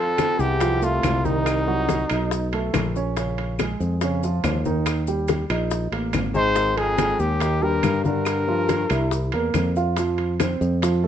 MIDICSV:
0, 0, Header, 1, 6, 480
1, 0, Start_track
1, 0, Tempo, 425834
1, 1650, Time_signature, 4, 2, 24, 8
1, 12483, End_track
2, 0, Start_track
2, 0, Title_t, "Trumpet"
2, 0, Program_c, 0, 56
2, 0, Note_on_c, 0, 69, 100
2, 452, Note_on_c, 0, 67, 85
2, 469, Note_off_c, 0, 69, 0
2, 945, Note_on_c, 0, 65, 85
2, 962, Note_off_c, 0, 67, 0
2, 1412, Note_on_c, 0, 63, 85
2, 1429, Note_off_c, 0, 65, 0
2, 2850, Note_off_c, 0, 63, 0
2, 7161, Note_on_c, 0, 72, 103
2, 7636, Note_on_c, 0, 68, 94
2, 7653, Note_off_c, 0, 72, 0
2, 8117, Note_on_c, 0, 67, 85
2, 8134, Note_off_c, 0, 68, 0
2, 8598, Note_on_c, 0, 70, 97
2, 8615, Note_off_c, 0, 67, 0
2, 9067, Note_off_c, 0, 70, 0
2, 9073, Note_on_c, 0, 70, 80
2, 10473, Note_off_c, 0, 70, 0
2, 12483, End_track
3, 0, Start_track
3, 0, Title_t, "Grand piano"
3, 0, Program_c, 1, 0
3, 0, Note_on_c, 1, 53, 59
3, 0, Note_on_c, 1, 65, 62
3, 124, Note_off_c, 1, 65, 0
3, 125, Note_off_c, 1, 53, 0
3, 203, Note_on_c, 1, 60, 56
3, 205, Note_on_c, 1, 72, 49
3, 600, Note_off_c, 1, 60, 0
3, 601, Note_off_c, 1, 72, 0
3, 688, Note_on_c, 1, 53, 63
3, 690, Note_on_c, 1, 65, 66
3, 886, Note_off_c, 1, 53, 0
3, 887, Note_off_c, 1, 65, 0
3, 922, Note_on_c, 1, 57, 70
3, 926, Note_on_c, 1, 69, 62
3, 1319, Note_off_c, 1, 57, 0
3, 1322, Note_off_c, 1, 69, 0
3, 1405, Note_on_c, 1, 51, 72
3, 1410, Note_on_c, 1, 63, 68
3, 1801, Note_off_c, 1, 51, 0
3, 1804, Note_off_c, 1, 63, 0
3, 1890, Note_on_c, 1, 54, 69
3, 1891, Note_on_c, 1, 66, 74
3, 2284, Note_off_c, 1, 54, 0
3, 2284, Note_off_c, 1, 66, 0
3, 2380, Note_on_c, 1, 63, 69
3, 2386, Note_on_c, 1, 75, 58
3, 2769, Note_off_c, 1, 63, 0
3, 2772, Note_off_c, 1, 75, 0
3, 2857, Note_on_c, 1, 57, 67
3, 2864, Note_on_c, 1, 69, 70
3, 3247, Note_off_c, 1, 57, 0
3, 3251, Note_off_c, 1, 69, 0
3, 3339, Note_on_c, 1, 61, 68
3, 3344, Note_on_c, 1, 73, 64
3, 3531, Note_off_c, 1, 61, 0
3, 3534, Note_off_c, 1, 73, 0
3, 3579, Note_on_c, 1, 49, 55
3, 3584, Note_on_c, 1, 61, 66
3, 3967, Note_off_c, 1, 49, 0
3, 3971, Note_off_c, 1, 61, 0
3, 4059, Note_on_c, 1, 56, 57
3, 4062, Note_on_c, 1, 68, 62
3, 4447, Note_off_c, 1, 56, 0
3, 4449, Note_off_c, 1, 68, 0
3, 4535, Note_on_c, 1, 49, 64
3, 4539, Note_on_c, 1, 61, 70
3, 4728, Note_off_c, 1, 49, 0
3, 4730, Note_off_c, 1, 61, 0
3, 4778, Note_on_c, 1, 53, 70
3, 4782, Note_on_c, 1, 65, 68
3, 5166, Note_off_c, 1, 53, 0
3, 5168, Note_off_c, 1, 65, 0
3, 5247, Note_on_c, 1, 51, 69
3, 5249, Note_on_c, 1, 63, 69
3, 5639, Note_off_c, 1, 51, 0
3, 5640, Note_off_c, 1, 63, 0
3, 5725, Note_on_c, 1, 55, 65
3, 5729, Note_on_c, 1, 67, 65
3, 6118, Note_off_c, 1, 55, 0
3, 6120, Note_off_c, 1, 67, 0
3, 6197, Note_on_c, 1, 63, 63
3, 6205, Note_on_c, 1, 75, 66
3, 6592, Note_off_c, 1, 63, 0
3, 6597, Note_off_c, 1, 75, 0
3, 6684, Note_on_c, 1, 58, 76
3, 6694, Note_on_c, 1, 70, 61
3, 7076, Note_off_c, 1, 58, 0
3, 7082, Note_off_c, 1, 70, 0
3, 7160, Note_on_c, 1, 63, 55
3, 7166, Note_on_c, 1, 75, 65
3, 7357, Note_off_c, 1, 63, 0
3, 7360, Note_off_c, 1, 75, 0
3, 7402, Note_on_c, 1, 51, 59
3, 7406, Note_on_c, 1, 63, 60
3, 7795, Note_off_c, 1, 51, 0
3, 7797, Note_off_c, 1, 63, 0
3, 7878, Note_on_c, 1, 56, 56
3, 7882, Note_on_c, 1, 68, 55
3, 8272, Note_off_c, 1, 56, 0
3, 8274, Note_off_c, 1, 68, 0
3, 8352, Note_on_c, 1, 51, 65
3, 8356, Note_on_c, 1, 63, 59
3, 8552, Note_off_c, 1, 51, 0
3, 8554, Note_off_c, 1, 63, 0
3, 8595, Note_on_c, 1, 55, 67
3, 8604, Note_on_c, 1, 67, 74
3, 8991, Note_off_c, 1, 55, 0
3, 8996, Note_off_c, 1, 67, 0
3, 9075, Note_on_c, 1, 50, 69
3, 9080, Note_on_c, 1, 62, 72
3, 9471, Note_off_c, 1, 50, 0
3, 9473, Note_off_c, 1, 62, 0
3, 9558, Note_on_c, 1, 53, 68
3, 9565, Note_on_c, 1, 65, 75
3, 9953, Note_off_c, 1, 53, 0
3, 9957, Note_off_c, 1, 65, 0
3, 10044, Note_on_c, 1, 64, 71
3, 10046, Note_on_c, 1, 76, 61
3, 10436, Note_off_c, 1, 64, 0
3, 10438, Note_off_c, 1, 76, 0
3, 10523, Note_on_c, 1, 58, 76
3, 10527, Note_on_c, 1, 70, 76
3, 10916, Note_off_c, 1, 58, 0
3, 10919, Note_off_c, 1, 70, 0
3, 11008, Note_on_c, 1, 65, 70
3, 11013, Note_on_c, 1, 77, 63
3, 11203, Note_off_c, 1, 65, 0
3, 11205, Note_off_c, 1, 77, 0
3, 11254, Note_on_c, 1, 53, 62
3, 11254, Note_on_c, 1, 65, 70
3, 11644, Note_off_c, 1, 53, 0
3, 11644, Note_off_c, 1, 65, 0
3, 11726, Note_on_c, 1, 60, 56
3, 11732, Note_on_c, 1, 72, 59
3, 12120, Note_off_c, 1, 60, 0
3, 12124, Note_off_c, 1, 72, 0
3, 12203, Note_on_c, 1, 53, 68
3, 12205, Note_on_c, 1, 65, 62
3, 12402, Note_off_c, 1, 53, 0
3, 12403, Note_off_c, 1, 65, 0
3, 12437, Note_on_c, 1, 57, 67
3, 12442, Note_on_c, 1, 69, 68
3, 12483, Note_off_c, 1, 57, 0
3, 12483, Note_off_c, 1, 69, 0
3, 12483, End_track
4, 0, Start_track
4, 0, Title_t, "Baritone saxophone"
4, 0, Program_c, 2, 67
4, 0, Note_on_c, 2, 41, 84
4, 433, Note_on_c, 2, 40, 72
4, 450, Note_off_c, 2, 41, 0
4, 929, Note_on_c, 2, 36, 70
4, 946, Note_off_c, 2, 40, 0
4, 1413, Note_off_c, 2, 36, 0
4, 1413, Note_on_c, 2, 36, 67
4, 2611, Note_off_c, 2, 36, 0
4, 7152, Note_on_c, 2, 44, 78
4, 7621, Note_on_c, 2, 41, 73
4, 7638, Note_off_c, 2, 44, 0
4, 8116, Note_on_c, 2, 39, 71
4, 8133, Note_off_c, 2, 41, 0
4, 8582, Note_on_c, 2, 43, 72
4, 8599, Note_off_c, 2, 39, 0
4, 9063, Note_off_c, 2, 43, 0
4, 9070, Note_on_c, 2, 43, 79
4, 10471, Note_off_c, 2, 43, 0
4, 12483, End_track
5, 0, Start_track
5, 0, Title_t, "Fingered electric bass"
5, 0, Program_c, 3, 33
5, 440, Note_on_c, 3, 36, 90
5, 1121, Note_off_c, 3, 36, 0
5, 1163, Note_on_c, 3, 36, 76
5, 2297, Note_off_c, 3, 36, 0
5, 2376, Note_on_c, 3, 35, 83
5, 3047, Note_off_c, 3, 35, 0
5, 3091, Note_on_c, 3, 34, 86
5, 4219, Note_off_c, 3, 34, 0
5, 4288, Note_on_c, 3, 41, 84
5, 4961, Note_off_c, 3, 41, 0
5, 5003, Note_on_c, 3, 39, 83
5, 6133, Note_off_c, 3, 39, 0
5, 6198, Note_on_c, 3, 34, 91
5, 6646, Note_off_c, 3, 34, 0
5, 6670, Note_on_c, 3, 33, 64
5, 6898, Note_off_c, 3, 33, 0
5, 6911, Note_on_c, 3, 32, 75
5, 8046, Note_off_c, 3, 32, 0
5, 8110, Note_on_c, 3, 39, 82
5, 8789, Note_off_c, 3, 39, 0
5, 8832, Note_on_c, 3, 43, 84
5, 9967, Note_off_c, 3, 43, 0
5, 10038, Note_on_c, 3, 36, 94
5, 10486, Note_off_c, 3, 36, 0
5, 10522, Note_on_c, 3, 40, 62
5, 10745, Note_off_c, 3, 40, 0
5, 10755, Note_on_c, 3, 41, 86
5, 11893, Note_off_c, 3, 41, 0
5, 11960, Note_on_c, 3, 41, 92
5, 12483, Note_off_c, 3, 41, 0
5, 12483, End_track
6, 0, Start_track
6, 0, Title_t, "Drums"
6, 205, Note_on_c, 9, 70, 58
6, 205, Note_on_c, 9, 75, 51
6, 207, Note_on_c, 9, 65, 81
6, 211, Note_on_c, 9, 63, 70
6, 213, Note_on_c, 9, 60, 61
6, 317, Note_off_c, 9, 75, 0
6, 318, Note_off_c, 9, 70, 0
6, 320, Note_off_c, 9, 65, 0
6, 324, Note_off_c, 9, 63, 0
6, 326, Note_off_c, 9, 60, 0
6, 446, Note_on_c, 9, 70, 26
6, 454, Note_on_c, 9, 63, 30
6, 559, Note_off_c, 9, 70, 0
6, 567, Note_off_c, 9, 63, 0
6, 681, Note_on_c, 9, 65, 62
6, 685, Note_on_c, 9, 70, 65
6, 690, Note_on_c, 9, 60, 65
6, 691, Note_on_c, 9, 63, 33
6, 793, Note_off_c, 9, 65, 0
6, 797, Note_off_c, 9, 70, 0
6, 803, Note_off_c, 9, 60, 0
6, 804, Note_off_c, 9, 63, 0
6, 928, Note_on_c, 9, 70, 55
6, 932, Note_on_c, 9, 63, 30
6, 934, Note_on_c, 9, 60, 31
6, 1040, Note_off_c, 9, 70, 0
6, 1044, Note_off_c, 9, 63, 0
6, 1047, Note_off_c, 9, 60, 0
6, 1166, Note_on_c, 9, 65, 84
6, 1166, Note_on_c, 9, 66, 66
6, 1168, Note_on_c, 9, 70, 61
6, 1171, Note_on_c, 9, 75, 66
6, 1174, Note_on_c, 9, 60, 27
6, 1174, Note_on_c, 9, 61, 68
6, 1174, Note_on_c, 9, 63, 73
6, 1278, Note_off_c, 9, 65, 0
6, 1278, Note_off_c, 9, 66, 0
6, 1281, Note_off_c, 9, 70, 0
6, 1284, Note_off_c, 9, 75, 0
6, 1287, Note_off_c, 9, 60, 0
6, 1287, Note_off_c, 9, 61, 0
6, 1287, Note_off_c, 9, 63, 0
6, 1409, Note_on_c, 9, 60, 34
6, 1411, Note_on_c, 9, 70, 29
6, 1414, Note_on_c, 9, 63, 70
6, 1522, Note_off_c, 9, 60, 0
6, 1524, Note_off_c, 9, 70, 0
6, 1526, Note_off_c, 9, 63, 0
6, 1647, Note_on_c, 9, 65, 77
6, 1650, Note_on_c, 9, 60, 53
6, 1653, Note_on_c, 9, 63, 30
6, 1655, Note_on_c, 9, 70, 61
6, 1657, Note_on_c, 9, 75, 69
6, 1759, Note_off_c, 9, 65, 0
6, 1762, Note_off_c, 9, 60, 0
6, 1766, Note_off_c, 9, 63, 0
6, 1768, Note_off_c, 9, 70, 0
6, 1769, Note_off_c, 9, 75, 0
6, 1884, Note_on_c, 9, 60, 33
6, 1893, Note_on_c, 9, 63, 28
6, 1997, Note_off_c, 9, 60, 0
6, 2006, Note_off_c, 9, 63, 0
6, 2125, Note_on_c, 9, 60, 58
6, 2127, Note_on_c, 9, 65, 62
6, 2130, Note_on_c, 9, 63, 86
6, 2137, Note_on_c, 9, 70, 57
6, 2237, Note_off_c, 9, 60, 0
6, 2240, Note_off_c, 9, 65, 0
6, 2243, Note_off_c, 9, 63, 0
6, 2249, Note_off_c, 9, 70, 0
6, 2362, Note_on_c, 9, 65, 89
6, 2365, Note_on_c, 9, 75, 56
6, 2376, Note_on_c, 9, 70, 27
6, 2475, Note_off_c, 9, 65, 0
6, 2477, Note_off_c, 9, 75, 0
6, 2489, Note_off_c, 9, 70, 0
6, 2608, Note_on_c, 9, 60, 62
6, 2614, Note_on_c, 9, 70, 67
6, 2622, Note_on_c, 9, 63, 33
6, 2720, Note_off_c, 9, 60, 0
6, 2727, Note_off_c, 9, 70, 0
6, 2734, Note_off_c, 9, 63, 0
6, 2843, Note_on_c, 9, 60, 30
6, 2850, Note_on_c, 9, 65, 68
6, 2856, Note_on_c, 9, 63, 30
6, 2956, Note_off_c, 9, 60, 0
6, 2963, Note_off_c, 9, 65, 0
6, 2969, Note_off_c, 9, 63, 0
6, 3085, Note_on_c, 9, 60, 32
6, 3085, Note_on_c, 9, 61, 76
6, 3088, Note_on_c, 9, 65, 94
6, 3090, Note_on_c, 9, 70, 61
6, 3092, Note_on_c, 9, 75, 67
6, 3104, Note_on_c, 9, 63, 75
6, 3198, Note_off_c, 9, 60, 0
6, 3198, Note_off_c, 9, 61, 0
6, 3200, Note_off_c, 9, 65, 0
6, 3203, Note_off_c, 9, 70, 0
6, 3204, Note_off_c, 9, 75, 0
6, 3216, Note_off_c, 9, 63, 0
6, 3331, Note_on_c, 9, 60, 30
6, 3335, Note_on_c, 9, 70, 27
6, 3444, Note_off_c, 9, 60, 0
6, 3447, Note_off_c, 9, 70, 0
6, 3568, Note_on_c, 9, 65, 64
6, 3570, Note_on_c, 9, 70, 68
6, 3574, Note_on_c, 9, 60, 55
6, 3578, Note_on_c, 9, 63, 33
6, 3681, Note_off_c, 9, 65, 0
6, 3683, Note_off_c, 9, 70, 0
6, 3687, Note_off_c, 9, 60, 0
6, 3691, Note_off_c, 9, 63, 0
6, 3812, Note_on_c, 9, 65, 58
6, 3816, Note_on_c, 9, 60, 34
6, 3819, Note_on_c, 9, 63, 30
6, 3924, Note_off_c, 9, 65, 0
6, 3929, Note_off_c, 9, 60, 0
6, 3931, Note_off_c, 9, 63, 0
6, 4045, Note_on_c, 9, 75, 58
6, 4047, Note_on_c, 9, 70, 54
6, 4050, Note_on_c, 9, 60, 59
6, 4053, Note_on_c, 9, 65, 81
6, 4056, Note_on_c, 9, 63, 77
6, 4158, Note_off_c, 9, 75, 0
6, 4160, Note_off_c, 9, 70, 0
6, 4162, Note_off_c, 9, 60, 0
6, 4166, Note_off_c, 9, 65, 0
6, 4168, Note_off_c, 9, 63, 0
6, 4291, Note_on_c, 9, 70, 26
6, 4292, Note_on_c, 9, 63, 32
6, 4403, Note_off_c, 9, 70, 0
6, 4405, Note_off_c, 9, 63, 0
6, 4524, Note_on_c, 9, 60, 58
6, 4524, Note_on_c, 9, 70, 64
6, 4528, Note_on_c, 9, 65, 60
6, 4531, Note_on_c, 9, 63, 31
6, 4636, Note_off_c, 9, 70, 0
6, 4637, Note_off_c, 9, 60, 0
6, 4641, Note_off_c, 9, 65, 0
6, 4643, Note_off_c, 9, 63, 0
6, 4771, Note_on_c, 9, 60, 31
6, 4771, Note_on_c, 9, 70, 57
6, 4779, Note_on_c, 9, 63, 33
6, 4884, Note_off_c, 9, 60, 0
6, 4884, Note_off_c, 9, 70, 0
6, 4892, Note_off_c, 9, 63, 0
6, 5002, Note_on_c, 9, 65, 87
6, 5002, Note_on_c, 9, 66, 68
6, 5005, Note_on_c, 9, 70, 66
6, 5007, Note_on_c, 9, 75, 67
6, 5008, Note_on_c, 9, 60, 32
6, 5008, Note_on_c, 9, 61, 69
6, 5008, Note_on_c, 9, 63, 69
6, 5115, Note_off_c, 9, 65, 0
6, 5115, Note_off_c, 9, 66, 0
6, 5118, Note_off_c, 9, 70, 0
6, 5120, Note_off_c, 9, 75, 0
6, 5121, Note_off_c, 9, 60, 0
6, 5121, Note_off_c, 9, 61, 0
6, 5121, Note_off_c, 9, 63, 0
6, 5245, Note_on_c, 9, 70, 29
6, 5248, Note_on_c, 9, 63, 73
6, 5256, Note_on_c, 9, 60, 33
6, 5357, Note_off_c, 9, 70, 0
6, 5361, Note_off_c, 9, 63, 0
6, 5369, Note_off_c, 9, 60, 0
6, 5477, Note_on_c, 9, 65, 81
6, 5479, Note_on_c, 9, 70, 65
6, 5482, Note_on_c, 9, 75, 65
6, 5486, Note_on_c, 9, 60, 61
6, 5487, Note_on_c, 9, 63, 34
6, 5590, Note_off_c, 9, 65, 0
6, 5592, Note_off_c, 9, 70, 0
6, 5594, Note_off_c, 9, 75, 0
6, 5598, Note_off_c, 9, 60, 0
6, 5600, Note_off_c, 9, 63, 0
6, 5717, Note_on_c, 9, 70, 56
6, 5728, Note_on_c, 9, 63, 31
6, 5734, Note_on_c, 9, 60, 35
6, 5830, Note_off_c, 9, 70, 0
6, 5841, Note_off_c, 9, 63, 0
6, 5846, Note_off_c, 9, 60, 0
6, 5951, Note_on_c, 9, 70, 60
6, 5956, Note_on_c, 9, 65, 69
6, 5966, Note_on_c, 9, 60, 57
6, 5970, Note_on_c, 9, 63, 75
6, 6064, Note_off_c, 9, 70, 0
6, 6069, Note_off_c, 9, 65, 0
6, 6079, Note_off_c, 9, 60, 0
6, 6082, Note_off_c, 9, 63, 0
6, 6196, Note_on_c, 9, 70, 27
6, 6200, Note_on_c, 9, 65, 93
6, 6200, Note_on_c, 9, 75, 58
6, 6309, Note_off_c, 9, 70, 0
6, 6313, Note_off_c, 9, 65, 0
6, 6313, Note_off_c, 9, 75, 0
6, 6433, Note_on_c, 9, 70, 64
6, 6442, Note_on_c, 9, 60, 58
6, 6454, Note_on_c, 9, 63, 36
6, 6546, Note_off_c, 9, 70, 0
6, 6554, Note_off_c, 9, 60, 0
6, 6567, Note_off_c, 9, 63, 0
6, 6678, Note_on_c, 9, 65, 72
6, 6681, Note_on_c, 9, 60, 30
6, 6683, Note_on_c, 9, 63, 30
6, 6791, Note_off_c, 9, 65, 0
6, 6793, Note_off_c, 9, 60, 0
6, 6796, Note_off_c, 9, 63, 0
6, 6912, Note_on_c, 9, 65, 86
6, 6912, Note_on_c, 9, 66, 63
6, 6913, Note_on_c, 9, 70, 57
6, 6920, Note_on_c, 9, 75, 63
6, 6925, Note_on_c, 9, 63, 75
6, 6927, Note_on_c, 9, 60, 27
6, 6927, Note_on_c, 9, 61, 74
6, 7024, Note_off_c, 9, 65, 0
6, 7024, Note_off_c, 9, 66, 0
6, 7026, Note_off_c, 9, 70, 0
6, 7032, Note_off_c, 9, 75, 0
6, 7038, Note_off_c, 9, 63, 0
6, 7040, Note_off_c, 9, 60, 0
6, 7040, Note_off_c, 9, 61, 0
6, 7151, Note_on_c, 9, 70, 29
6, 7153, Note_on_c, 9, 60, 36
6, 7159, Note_on_c, 9, 63, 63
6, 7264, Note_off_c, 9, 70, 0
6, 7266, Note_off_c, 9, 60, 0
6, 7272, Note_off_c, 9, 63, 0
6, 7390, Note_on_c, 9, 65, 63
6, 7390, Note_on_c, 9, 70, 70
6, 7394, Note_on_c, 9, 60, 54
6, 7399, Note_on_c, 9, 63, 30
6, 7502, Note_off_c, 9, 65, 0
6, 7503, Note_off_c, 9, 70, 0
6, 7507, Note_off_c, 9, 60, 0
6, 7512, Note_off_c, 9, 63, 0
6, 7633, Note_on_c, 9, 63, 29
6, 7637, Note_on_c, 9, 65, 68
6, 7639, Note_on_c, 9, 60, 33
6, 7746, Note_off_c, 9, 63, 0
6, 7750, Note_off_c, 9, 65, 0
6, 7752, Note_off_c, 9, 60, 0
6, 7869, Note_on_c, 9, 70, 62
6, 7870, Note_on_c, 9, 60, 60
6, 7873, Note_on_c, 9, 63, 88
6, 7873, Note_on_c, 9, 75, 52
6, 7874, Note_on_c, 9, 65, 83
6, 7982, Note_off_c, 9, 70, 0
6, 7983, Note_off_c, 9, 60, 0
6, 7985, Note_off_c, 9, 63, 0
6, 7985, Note_off_c, 9, 75, 0
6, 7987, Note_off_c, 9, 65, 0
6, 8110, Note_on_c, 9, 70, 28
6, 8116, Note_on_c, 9, 63, 28
6, 8222, Note_off_c, 9, 70, 0
6, 8228, Note_off_c, 9, 63, 0
6, 8346, Note_on_c, 9, 65, 69
6, 8352, Note_on_c, 9, 70, 59
6, 8353, Note_on_c, 9, 63, 35
6, 8358, Note_on_c, 9, 60, 60
6, 8459, Note_off_c, 9, 65, 0
6, 8465, Note_off_c, 9, 70, 0
6, 8466, Note_off_c, 9, 63, 0
6, 8471, Note_off_c, 9, 60, 0
6, 8592, Note_on_c, 9, 60, 28
6, 8601, Note_on_c, 9, 63, 29
6, 8704, Note_off_c, 9, 60, 0
6, 8714, Note_off_c, 9, 63, 0
6, 8827, Note_on_c, 9, 65, 87
6, 8830, Note_on_c, 9, 63, 82
6, 8831, Note_on_c, 9, 75, 66
6, 8832, Note_on_c, 9, 70, 67
6, 8833, Note_on_c, 9, 60, 29
6, 8833, Note_on_c, 9, 61, 71
6, 8939, Note_off_c, 9, 65, 0
6, 8943, Note_off_c, 9, 63, 0
6, 8944, Note_off_c, 9, 75, 0
6, 8945, Note_off_c, 9, 70, 0
6, 8946, Note_off_c, 9, 60, 0
6, 8946, Note_off_c, 9, 61, 0
6, 9068, Note_on_c, 9, 60, 33
6, 9073, Note_on_c, 9, 63, 72
6, 9076, Note_on_c, 9, 70, 25
6, 9181, Note_off_c, 9, 60, 0
6, 9186, Note_off_c, 9, 63, 0
6, 9189, Note_off_c, 9, 70, 0
6, 9303, Note_on_c, 9, 75, 73
6, 9310, Note_on_c, 9, 70, 66
6, 9316, Note_on_c, 9, 65, 76
6, 9317, Note_on_c, 9, 60, 57
6, 9321, Note_on_c, 9, 63, 28
6, 9416, Note_off_c, 9, 75, 0
6, 9423, Note_off_c, 9, 70, 0
6, 9429, Note_off_c, 9, 60, 0
6, 9429, Note_off_c, 9, 65, 0
6, 9434, Note_off_c, 9, 63, 0
6, 9558, Note_on_c, 9, 63, 31
6, 9562, Note_on_c, 9, 60, 34
6, 9670, Note_off_c, 9, 63, 0
6, 9674, Note_off_c, 9, 60, 0
6, 9794, Note_on_c, 9, 60, 57
6, 9795, Note_on_c, 9, 70, 64
6, 9798, Note_on_c, 9, 65, 72
6, 9799, Note_on_c, 9, 63, 76
6, 9906, Note_off_c, 9, 60, 0
6, 9907, Note_off_c, 9, 70, 0
6, 9911, Note_off_c, 9, 63, 0
6, 9911, Note_off_c, 9, 65, 0
6, 10027, Note_on_c, 9, 75, 52
6, 10031, Note_on_c, 9, 65, 83
6, 10044, Note_on_c, 9, 70, 29
6, 10140, Note_off_c, 9, 75, 0
6, 10144, Note_off_c, 9, 65, 0
6, 10156, Note_off_c, 9, 70, 0
6, 10273, Note_on_c, 9, 60, 64
6, 10282, Note_on_c, 9, 70, 64
6, 10287, Note_on_c, 9, 63, 34
6, 10386, Note_off_c, 9, 60, 0
6, 10395, Note_off_c, 9, 70, 0
6, 10399, Note_off_c, 9, 63, 0
6, 10507, Note_on_c, 9, 65, 73
6, 10520, Note_on_c, 9, 60, 31
6, 10524, Note_on_c, 9, 63, 30
6, 10620, Note_off_c, 9, 65, 0
6, 10632, Note_off_c, 9, 60, 0
6, 10636, Note_off_c, 9, 63, 0
6, 10752, Note_on_c, 9, 65, 84
6, 10755, Note_on_c, 9, 75, 61
6, 10758, Note_on_c, 9, 70, 61
6, 10760, Note_on_c, 9, 63, 73
6, 10766, Note_on_c, 9, 60, 29
6, 10766, Note_on_c, 9, 61, 73
6, 10865, Note_off_c, 9, 65, 0
6, 10868, Note_off_c, 9, 75, 0
6, 10871, Note_off_c, 9, 70, 0
6, 10873, Note_off_c, 9, 63, 0
6, 10878, Note_off_c, 9, 60, 0
6, 10878, Note_off_c, 9, 61, 0
6, 11002, Note_on_c, 9, 70, 28
6, 11006, Note_on_c, 9, 60, 34
6, 11114, Note_off_c, 9, 70, 0
6, 11119, Note_off_c, 9, 60, 0
6, 11232, Note_on_c, 9, 65, 65
6, 11234, Note_on_c, 9, 60, 58
6, 11240, Note_on_c, 9, 63, 28
6, 11241, Note_on_c, 9, 70, 68
6, 11344, Note_off_c, 9, 65, 0
6, 11347, Note_off_c, 9, 60, 0
6, 11352, Note_off_c, 9, 63, 0
6, 11354, Note_off_c, 9, 70, 0
6, 11476, Note_on_c, 9, 65, 59
6, 11477, Note_on_c, 9, 60, 35
6, 11484, Note_on_c, 9, 63, 29
6, 11588, Note_off_c, 9, 65, 0
6, 11590, Note_off_c, 9, 60, 0
6, 11597, Note_off_c, 9, 63, 0
6, 11719, Note_on_c, 9, 65, 89
6, 11720, Note_on_c, 9, 75, 57
6, 11722, Note_on_c, 9, 60, 64
6, 11726, Note_on_c, 9, 70, 67
6, 11728, Note_on_c, 9, 63, 89
6, 11832, Note_off_c, 9, 65, 0
6, 11833, Note_off_c, 9, 75, 0
6, 11834, Note_off_c, 9, 60, 0
6, 11839, Note_off_c, 9, 70, 0
6, 11840, Note_off_c, 9, 63, 0
6, 11967, Note_on_c, 9, 63, 31
6, 11968, Note_on_c, 9, 70, 29
6, 12080, Note_off_c, 9, 63, 0
6, 12081, Note_off_c, 9, 70, 0
6, 12200, Note_on_c, 9, 65, 65
6, 12208, Note_on_c, 9, 60, 67
6, 12208, Note_on_c, 9, 63, 33
6, 12212, Note_on_c, 9, 70, 72
6, 12313, Note_off_c, 9, 65, 0
6, 12321, Note_off_c, 9, 60, 0
6, 12321, Note_off_c, 9, 63, 0
6, 12325, Note_off_c, 9, 70, 0
6, 12444, Note_on_c, 9, 63, 32
6, 12483, Note_off_c, 9, 63, 0
6, 12483, End_track
0, 0, End_of_file